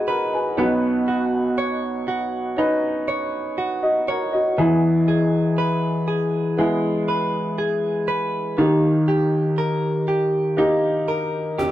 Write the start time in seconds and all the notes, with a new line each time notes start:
Already playing: G#1 G#2 G#3 B3 D#4 F#4 G#4 B4 C#5 D#5
0.08 A#4 B4 F#5
0.33 B4 G#5
0.57 B1 B2 B3 C#4 D#4 B4
1.08 F#4
1.58 C#5
2.08 F#4
2.57 C#4 D#4 B4
3.08 C#5
3.58 F#4
3.83 F#4 D#5
4.08 A#4 C#5 F#5
4.33 F#4 D#5
4.57 E2 E3 B3 E4 G#4
5.08 G#4
5.58 B4
6.08 G#4
6.57 G#3 B3 E4 G#4
7.08 B4
7.58 G#4
8.08 B4
8.57 D#2 D#3 A#3 D#4 G4
9.08 G4
9.58 A#4
10.08 G4
10.57 A#3 D#4 G4
11.08 A#4
11.58 G4, cajon slap